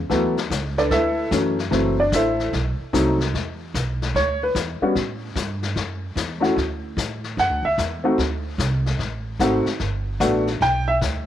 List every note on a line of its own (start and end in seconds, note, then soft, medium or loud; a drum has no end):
0.10 0.49 D2 medium
0.10 0.34 E3 medium
0.10 0.34 F#3 medium
0.10 0.34 A3 medium
0.10 0.34 B3 medium
0.10 brush sweep soft
0.10 kick soft
0.10 snare soft
0.37 snare soft
0.50 0.90 C#2 medium
0.50 kick soft
0.50 snare medium
0.50 hi-hat pedal medium
0.78 0.91 D4 medium
0.78 0.89 A4 medium
0.78 0.91 B4 medium
0.78 0.91 D5 medium
0.78 snare soft
0.90 1.30 D2 medium
0.90 1.29 E4 medium
0.90 1.28 A4 medium
0.90 1.29 B4 medium
0.90 1.29 E5 medium
0.90 brush sweep soft
0.90 kick soft
0.90 snare soft
1.31 1.70 F#2 medium
1.31 1.55 E3 medium
1.31 1.55 F#3 medium
1.31 1.55 A3 soft
1.31 1.56 C#4 medium
1.31 kick soft
1.31 snare medium
1.31 hi-hat pedal medium
1.59 snare soft
1.71 2.11 F#1 medium
1.71 1.95 E3 medium
1.71 1.95 F#3 medium
1.71 1.95 A3 medium
1.71 1.96 C4 medium
1.71 brush sweep soft
1.71 kick soft
1.71 snare soft
2.00 2.13 D4 medium
2.00 2.12 D5 medium
2.12 2.51 A1 medium
2.12 2.51 E4 medium
2.12 2.51 A4 medium
2.12 2.51 C5 medium
2.12 2.51 E5 medium
2.12 kick soft
2.12 snare medium
2.12 hi-hat pedal medium
2.40 snare soft
2.53 2.78 B1 medium
2.53 brush sweep soft
2.53 kick soft
2.53 snare soft
2.80 muted upright bass stroke soft
2.93 3.32 C2 medium
2.93 3.17 F#3 medium
2.93 3.17 A3 medium
2.93 3.17 C4 medium
2.93 3.17 D#4 medium
2.93 kick soft
2.93 snare medium
2.93 hi-hat pedal medium
3.20 snare soft
3.34 3.73 E2 medium
3.34 brush sweep soft
3.34 kick soft
3.34 snare soft
3.74 4.13 B1 medium
3.74 kick soft
3.74 snare medium
3.74 hi-hat pedal medium
4.02 snare soft
4.15 4.54 D2 medium
4.15 4.41 C#5 medium
4.15 brush sweep soft
4.15 kick soft
4.15 snare soft
4.43 4.55 B4 medium
4.55 4.79 E2 medium
4.55 kick soft
4.55 snare medium
4.55 hi-hat pedal medium
4.81 4.94 G3 medium
4.81 4.94 B3 medium
4.81 4.94 C#4 medium
4.81 4.94 F#4 medium
4.81 muted upright bass stroke soft
4.95 5.34 A2 medium
4.95 brush sweep medium
4.95 kick soft
4.95 snare soft
5.35 5.75 G2 medium
5.35 kick soft
5.35 snare medium
5.35 hi-hat pedal medium
5.63 snare soft
5.76 6.15 F#2 medium
5.76 brush sweep soft
5.76 kick soft
5.76 snare soft
6.15 6.55 E2 medium
6.15 kick soft
6.15 snare medium
6.15 hi-hat pedal medium
6.40 6.54 A3 medium
6.40 6.54 C#4 medium
6.40 6.54 E4 medium
6.40 6.55 F#4 medium
6.40 snare soft
6.56 6.96 D2 medium
6.56 brush sweep soft
6.56 kick soft
6.56 snare soft
6.97 7.36 A2 medium
6.97 kick soft
6.97 snare medium
6.97 hi-hat pedal medium
7.24 snare soft
7.37 7.49 F#2 medium
7.37 7.64 F#5 medium
7.37 brush sweep soft
7.37 kick soft
7.37 snare soft
7.49 7.62 D2 medium
7.63 7.76 C#2 medium
7.63 7.78 E5 medium
7.78 8.17 E2 medium
7.78 kick soft
7.78 snare medium
7.78 hi-hat pedal medium
8.04 8.17 A3 medium
8.04 8.16 C4 medium
8.04 8.17 D#4 medium
8.04 8.17 F#4 medium
8.18 8.57 D2 medium
8.18 brush sweep soft
8.18 kick soft
8.18 snare soft
8.58 8.98 C2 loud
8.58 kick soft
8.58 snare medium
8.58 hi-hat pedal medium
8.86 snare soft
8.99 9.38 A1 medium
8.99 brush sweep soft
8.99 kick soft
8.99 snare soft
9.39 9.64 G#1 medium
9.39 9.64 A3 medium
9.39 9.64 C4 medium
9.39 9.64 D#4 medium
9.39 9.64 F#4 medium
9.39 kick soft
9.39 snare medium
9.39 hi-hat pedal medium
9.66 snare soft
9.79 10.19 G1 medium
9.79 brush sweep soft
9.79 kick soft
9.79 snare soft
10.20 10.59 A1 loud
10.20 10.44 A3 medium
10.20 10.44 B3 medium
10.20 10.44 D4 medium
10.20 10.45 F#4 medium
10.20 kick soft
10.20 snare medium
10.20 hi-hat pedal medium
10.47 snare soft
10.61 11.00 B1 medium
10.61 10.87 G5 loud
10.61 brush sweep soft
10.61 kick soft
10.61 snare soft
10.88 10.96 E5 medium
11.01 11.26 D2 medium
11.01 kick soft
11.01 snare medium
11.01 hi-hat pedal medium